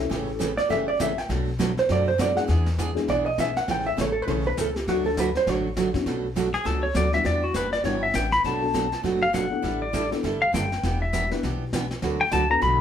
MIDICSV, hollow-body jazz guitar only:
0, 0, Header, 1, 2, 480
1, 0, Start_track
1, 0, Tempo, 298063
1, 164, Time_signature, 4, 2, 24, 8
1, 20628, End_track
2, 0, Start_track
2, 0, Title_t, "Hollow-body jazz guitar"
2, 0, Program_c, 0, 26
2, 925, Note_on_c, 0, 74, 99
2, 1114, Note_off_c, 0, 74, 0
2, 1134, Note_on_c, 0, 76, 91
2, 1411, Note_off_c, 0, 76, 0
2, 1418, Note_on_c, 0, 74, 94
2, 1600, Note_off_c, 0, 74, 0
2, 1631, Note_on_c, 0, 76, 82
2, 1904, Note_off_c, 0, 76, 0
2, 1904, Note_on_c, 0, 79, 119
2, 2083, Note_off_c, 0, 79, 0
2, 2883, Note_on_c, 0, 72, 88
2, 3053, Note_off_c, 0, 72, 0
2, 3090, Note_on_c, 0, 74, 101
2, 3343, Note_off_c, 0, 74, 0
2, 3349, Note_on_c, 0, 72, 93
2, 3526, Note_off_c, 0, 72, 0
2, 3564, Note_on_c, 0, 74, 101
2, 3813, Note_on_c, 0, 78, 101
2, 3826, Note_off_c, 0, 74, 0
2, 3927, Note_off_c, 0, 78, 0
2, 4988, Note_on_c, 0, 74, 87
2, 5242, Note_off_c, 0, 74, 0
2, 5249, Note_on_c, 0, 75, 93
2, 5434, Note_off_c, 0, 75, 0
2, 5479, Note_on_c, 0, 76, 96
2, 5742, Note_off_c, 0, 76, 0
2, 5749, Note_on_c, 0, 78, 99
2, 5925, Note_off_c, 0, 78, 0
2, 5974, Note_on_c, 0, 79, 106
2, 6224, Note_on_c, 0, 76, 107
2, 6230, Note_off_c, 0, 79, 0
2, 6402, Note_off_c, 0, 76, 0
2, 6459, Note_on_c, 0, 73, 94
2, 6586, Note_off_c, 0, 73, 0
2, 6640, Note_on_c, 0, 69, 85
2, 6799, Note_off_c, 0, 69, 0
2, 6799, Note_on_c, 0, 71, 96
2, 6934, Note_off_c, 0, 71, 0
2, 6934, Note_on_c, 0, 73, 99
2, 7189, Note_off_c, 0, 73, 0
2, 7198, Note_on_c, 0, 71, 104
2, 7369, Note_off_c, 0, 71, 0
2, 7427, Note_on_c, 0, 69, 83
2, 7675, Note_off_c, 0, 69, 0
2, 7675, Note_on_c, 0, 67, 100
2, 7847, Note_off_c, 0, 67, 0
2, 7872, Note_on_c, 0, 66, 81
2, 8137, Note_off_c, 0, 66, 0
2, 8149, Note_on_c, 0, 69, 94
2, 8323, Note_off_c, 0, 69, 0
2, 8371, Note_on_c, 0, 71, 83
2, 8627, Note_off_c, 0, 71, 0
2, 8650, Note_on_c, 0, 72, 104
2, 8845, Note_off_c, 0, 72, 0
2, 8845, Note_on_c, 0, 73, 91
2, 9687, Note_off_c, 0, 73, 0
2, 20628, End_track
0, 0, End_of_file